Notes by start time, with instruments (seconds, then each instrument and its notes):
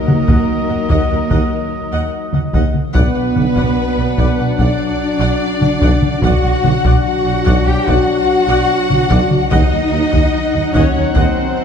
Already playing: french horn section F#3 D#4, cello section A#3, violin section A#4, trumpet D#5
0.07 double bass section D#2, tuba D#2, viola section D#5 F#5, taiko mid
0.27 double bass section D#2, viola section D#5 F#5, taiko
0.68 double bass section D#2, viola section D#5 F#5
0.88 tuba D#2, double bass section D#2, viola section D#5 F#5, taiko
1.09 double bass section D#2, viola section D#5 F#5
1.29 tuba D#2, double bass section D#2, viola section D#5 F#5, taiko
1.92 double bass section D#2, viola section D#5 F#5
2.33 double bass section D#2, viola section D#5 F#5, taiko mid
2.53 tuba D#2, double bass section D#2, viola section D#5 F#5, taiko
2.74 taiko mid
2.94 double bass section B1, tuba B1, french horn section F#3 D4, cello section B3, violin section B4, viola section D5 F#5, trumpet F#5, taiko
3.15 double bass section B1, viola section D5 F#5
3.35 double bass section B1, tuba B1, viola section D5 F#5, taiko mid
3.56 double bass section B1, viola section D5 F#5, taiko
3.97 double bass section B1, viola section D5 F#5
4.18 double bass section B1, tuba B1, viola section D5 F#5, taiko
4.38 double bass section B1, viola section D5 F#5
4.58 double bass section B1, tuba B1, cello section D4, viola section D5 F#5, violin section D5, taiko
5.20 double bass section B1, viola section D5 F#5
5.60 double bass section B1, viola section D5 F#5, taiko mid
5.81 double bass section B1, tuba B1, viola section D5 F#5, taiko
6.02 taiko mid
6.23 double bass section B1, tuba B1, french horn section F#3 D4, cello section F#4, viola section D5 F#5, trumpet F#5, violin section F#5, taiko
6.43 double bass section B1, viola section D5 F#5
6.64 tuba B1, double bass section B1, viola section D5 F#5, taiko mid
6.84 double bass section B1, viola section D5 F#5, taiko
7.04 cello section F#4, violin section F#5
7.25 double bass section B1, viola section D5 F#5
7.45 double bass section B1, tuba B1, viola section D5 F#5, taiko
7.65 double bass section B1, cello section G4, viola section D5 F#5, violin section G5
7.86 tuba B1, double bass section B1, cello section F#4, viola section D5 F#5, violin section F#5, taiko
8.48 double bass section B1, viola section D5 F#5
8.89 double bass section B1, viola section D5 F#5, taiko mid
9.10 double bass section B1, tuba B1, viola section D5 F#5, taiko
9.31 taiko mid
9.51 double bass section D#2, tuba D#2, french horn section F#3 D#4, cello section D#4, viola section D#5 F#5, violin section D#5, trumpet F#5, taiko
9.71 double bass section D#2, viola section D#5 F#5
9.91 double bass section D#2, tuba D#2, viola section D#5 F#5
10.11 double bass section D#2, viola section D#5 F#5, taiko
10.52 double bass section D#2, viola section D#5 F#5
10.74 double bass section D#2, tuba D#2, cello section C#4, violin section C#5, viola section D#5 F#5, taiko
10.95 double bass section D#2, viola section D#5 F#5
11.15 tuba D#2, double bass section D#2, cello section C4, violin section C5, viola section D#5 F#5, taiko